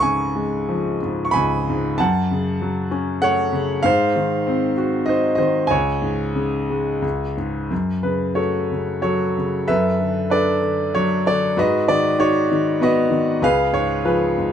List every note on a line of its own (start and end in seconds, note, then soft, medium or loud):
0.00 1.32 C#2 medium
0.00 0.99 G#2 soft
0.00 1.32 C#3 soft
0.00 2.02 A4 medium
0.00 2.01 C#5 medium
0.00 0.98 G#5 medium
0.00 0.97 C#6 medium
0.36 1.64 G#3 soft
0.69 1.96 F3 soft
1.03 1.68 G#2 soft
1.25 1.34 C#6 medium
1.31 1.95 G#5 medium
1.31 1.99 B5 loud
1.35 1.98 C#2 medium
1.69 1.99 G#2 medium
1.98 3.81 F#2 medium
1.98 2.88 F#5 medium
1.98 2.87 A5 medium
2.31 3.50 C#3 soft
2.62 3.81 F#3 medium
2.91 3.81 C#4 medium
3.22 3.82 A3 medium
3.22 3.81 C#5 medium
3.22 3.86 F#5 loud
3.53 3.83 C#3 medium
3.83 5.65 G#2 medium
3.83 4.73 C5 medium
3.83 4.72 F5 loud
4.16 5.34 D#3 soft
4.47 5.66 C4 medium
4.78 5.67 F#4 medium
5.06 5.68 D#4 medium
5.06 5.37 C5 medium
5.06 5.34 D#5 medium
5.35 5.69 D#3 medium
5.35 5.67 C5 medium
5.35 5.69 D#5 medium
5.67 7.00 C#2 medium
5.67 7.35 C#5 medium
5.67 7.33 G#5 medium
6.02 7.01 G#2 soft
6.35 7.02 C#3 medium
6.70 7.03 G#3 soft
7.02 7.68 C#2 medium
7.37 7.70 G#2 soft
7.71 9.65 F#2 medium
8.03 8.70 C#3 soft
8.03 8.38 B4 medium
8.35 9.64 A3 soft
8.35 9.00 F#4 soft
8.35 9.01 A4 soft
8.35 9.01 C#5 medium
8.72 9.36 C#3 soft
9.02 9.67 F#3 soft
9.02 9.63 F#4 soft
9.02 9.64 A4 medium
9.02 9.70 C#5 medium
9.38 9.68 C#3 soft
9.67 11.53 F#2 medium
9.67 10.29 A4 medium
9.67 10.29 B4 medium
9.67 10.33 E5 medium
9.99 10.60 D3 soft
10.30 11.53 D4 soft
10.30 11.21 A4 medium
10.30 11.21 B4 medium
10.30 10.90 D5 medium
10.62 11.24 D3 soft
10.95 11.56 F#3 medium
10.95 11.27 C#5 medium
11.26 11.56 D3 soft
11.26 11.59 D5 medium
11.57 13.38 G#2 medium
11.57 12.18 F#4 medium
11.57 12.47 B4 medium
11.57 11.90 D#5 medium
11.88 12.50 D#3 soft
11.88 12.20 D5 medium
12.19 13.39 D#4 medium
12.19 12.81 F#4 medium
12.19 12.83 C#5 medium
12.52 13.09 D#3 soft
12.80 13.40 B3 medium
12.80 13.39 F#4 medium
12.80 13.39 B4 medium
12.80 13.45 D#5 medium
13.10 13.41 D#3 soft
13.42 14.52 C#2 medium
13.42 14.04 G#4 medium
13.42 14.04 B4 medium
13.42 13.75 F5 loud
13.73 14.37 G#2 soft
13.73 14.06 C#5 medium
14.05 14.52 F3 soft
14.05 14.52 F4 soft
14.05 14.52 G#4 soft
14.05 14.52 B4 medium
14.38 14.52 G#2 soft